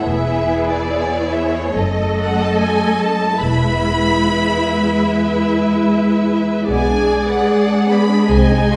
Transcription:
0.05 double bass section E1, cello section E2, viola section B3 E4, violin section G#4 B4 E5
0.69 violin section D5
0.92 violin section C#5
1.34 violin section E5
1.55 violin section C#5
1.75 double bass section F#1, cello section F#2, viola section A3 A4, violin section A4 D#5
2.20 violin section F#5
2.41 violin section A5
2.61 violin section G#5
3.00 violin section A5
3.40 double bass section E1, cello section E2, viola section G#3 E4, violin section B4 E5 B5
6.68 double bass section B1, cello section B2, viola section G#3 G#4, violin section B3 D5 G#5
6.89 violin section D4
7.09 violin section G#4
7.29 violin section B4 F#5
7.50 violin section G#4
7.69 violin section D4
7.89 violin section B3 B5
8.09 violin section D4
8.30 double bass section C2, cello section C3, violin section C4 D#5 G#5
8.51 violin section D#4
8.72 violin section F#4

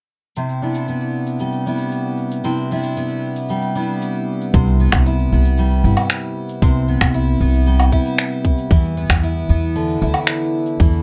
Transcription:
0.36 twelve-string acoustic guitar C3 E4, shaker
0.49 shaker
0.62 twelve-string acoustic guitar B3 D4 E4
0.74 shaker
0.88 twelve-string acoustic guitar B3, shaker
1.01 shaker
1.27 shaker
1.39 twelve-string acoustic guitar G3, shaker
1.53 shaker
1.66 twelve-string acoustic guitar B3 D4 E4
1.79 shaker
1.92 shaker
2.18 shaker
2.31 shaker
2.44 twelve-string acoustic guitar C3 E4, shaker
2.58 shaker
2.71 twelve-string acoustic guitar B3 D4 E4
2.84 shaker
2.97 twelve-string acoustic guitar B3, shaker
3.10 shaker
3.36 shaker
3.49 twelve-string acoustic guitar G3, shaker
3.62 shaker
3.75 twelve-string acoustic guitar B3 D4 E4
4.02 shaker
4.15 shaker
4.41 shaker
4.54 upright bass C2, twelve-string acoustic guitar C3, kick, shaker
4.67 shaker
4.80 twelve-string acoustic guitar B3
4.92 upright bass C2, finger snap, kick, low woodblock
5.06 twelve-string acoustic guitar E4, shaker
5.19 shaker
5.32 upright bass C2, twelve-string acoustic guitar B3
5.45 shaker
5.57 twelve-string acoustic guitar G3, shaker
5.71 shaker
5.84 upright bass G1, twelve-string acoustic guitar E4
5.97 low woodblock, shaker
6.10 finger snap, shaker
6.23 shaker
6.49 shaker
6.62 upright bass C2, twelve-string acoustic guitar C3, kick, shaker
6.75 shaker
6.88 twelve-string acoustic guitar B3
7.01 upright bass C2, finger snap, kick, low woodblock
7.14 twelve-string acoustic guitar E4, shaker
7.28 shaker
7.40 upright bass C2, twelve-string acoustic guitar B3
7.54 shaker
7.66 twelve-string acoustic guitar G3, shaker
7.80 low woodblock, shaker
7.92 twelve-string acoustic guitar E4, kick
8.05 shaker
8.18 finger snap, shaker
8.32 shaker
8.45 kick
8.58 shaker
8.71 upright bass E2, twelve-string acoustic guitar E3, kick, shaker
8.84 shaker
8.97 twelve-string acoustic guitar B3
9.10 upright bass E2, finger snap, kick, low woodblock, shaker
9.23 twelve-string acoustic guitar E4, shaker
9.43 shaker
9.49 upright bass E2, twelve-string acoustic guitar B3
9.75 twelve-string acoustic guitar D3, shaker
9.88 shaker
9.91 shaker
9.98 shaker
10.01 upright bass D2, twelve-string acoustic guitar E4, shaker
10.05 shaker
10.08 shaker
10.11 low woodblock, shaker
10.14 shaker
10.27 finger snap, shaker
10.41 shaker
10.66 shaker
10.80 upright bass E2, twelve-string acoustic guitar E3, kick, shaker
10.92 shaker

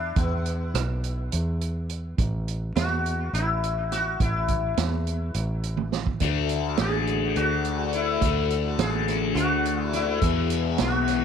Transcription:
Already playing: fingered electric bass E2, sitar D4
0.16 fingered electric bass E2, sitar B3, kick, closed hi-hat
0.46 closed hi-hat
0.74 fingered electric bass B1, cross-stick, closed hi-hat
1.04 closed hi-hat
1.32 fingered electric bass E2, closed hi-hat
1.61 closed hi-hat
1.90 closed hi-hat
2.18 fingered electric bass A1, kick, closed hi-hat
2.48 closed hi-hat
2.76 fingered electric bass E2, sitar F#4, snare, closed hi-hat
3.06 closed hi-hat
3.33 fingered electric bass A1, sitar E4, closed hi-hat
3.64 closed hi-hat
3.92 sitar F#4, snare, closed hi-hat
4.20 fingered electric bass A1, sitar E4, kick, closed hi-hat
4.48 kick, closed hi-hat
4.77 fingered electric bass E2, snare, closed hi-hat
5.07 closed hi-hat
5.34 fingered electric bass A1, closed hi-hat
5.63 closed hi-hat
5.77 high tom
5.92 snare
6.07 kick
6.20 fingered electric bass D2, distorted electric guitar D3 A3, tonewheel organ A3 F#4 D5 F#5, kick, closed hi-hat
6.25 distorted electric guitar D4
6.49 closed hi-hat
6.77 fingered electric bass A1, sitar G#4, snare, closed hi-hat
7.07 closed hi-hat
7.36 fingered electric bass D2, sitar F#4, closed hi-hat
7.65 closed hi-hat
7.93 sitar E4, closed hi-hat
8.21 fingered electric bass D2, distorted electric guitar D3 A3 D4, kick, closed hi-hat
8.50 closed hi-hat
8.78 fingered electric bass A1, sitar G#4, snare, closed hi-hat
9.08 snare, closed hi-hat
9.35 fingered electric bass D2, sitar F#4, closed hi-hat
9.65 closed hi-hat
9.82 sitar E4
9.93 sitar E4, snare, closed hi-hat
10.02 sitar F#4
10.06 sitar E4
10.22 fingered electric bass E2, distorted electric guitar E2 B2 E3, tonewheel organ G#4 B4 E5 G#5, kick, closed hi-hat
10.50 closed hi-hat
10.78 fingered electric bass B1, sitar F#4, snare, closed hi-hat
11.07 snare, closed hi-hat

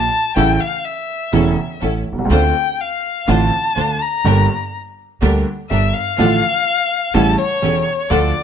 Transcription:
Already playing: violin A5
0.36 upright bass A1, upright piano A1 A2 C#3 E3 A3 E4, string section C#4 E4 A4, violin G5
0.60 violin F5
0.85 violin E5
1.32 upright piano E1 E2 C#3 E3 A3 E4, upright bass E1, string section C#4 E4 A4
1.81 upright bass A1, upright piano A1 A2, string section C#4 E4 A4
2.12 upright bass B1, upright piano B1
2.18 upright bass C2, upright piano C2
2.24 upright bass C#2, upright piano C#2
2.30 upright bass D2, upright piano D2 D3 A3 C4 F4, string section D4 F4 C5, violin G5
2.81 violin F5
3.27 upright bass A1, upright piano A1 A2 D3 A3 C4 F4, string section D4 F4 C5, violin A5
3.76 upright bass D2, upright piano D2 D3, string section D4 F4 C5
4.02 violin A#5
4.25 upright bass G1, upright piano G1 G2 D3 G3 A#3 G4, string section D4 G4 A#4
5.22 upright bass D2, upright piano D2 D3 G3 A#3 G4, string section D4 G4 A#4
5.69 upright bass G1, upright piano G1 G2, string section D4 G4 A#4, violin E5
5.94 violin F5
6.18 upright bass A1, upright piano A1 A2 D3 F3 A3 F4, string section D4 F4 A4
7.14 upright bass A1, upright piano A1 A2 C#3 G3 A3 E4, string section C#4 G4 A4, violin A5
7.38 violin C#5
7.62 upright bass E1, upright piano E1 E2, string section C#4 G4 A4
8.10 upright bass D2, upright piano D2 D3 F3 A3 F4, string section D4 F4 A4, violin D5

